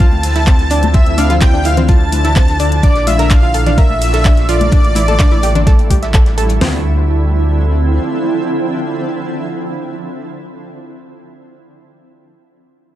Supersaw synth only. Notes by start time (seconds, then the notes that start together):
0.00 A5
0.94 E5
1.18 F5
1.42 G5
1.65 F5
1.89 A5
2.83 D5
3.07 E5
3.31 F5
3.78 E5
4.49 D5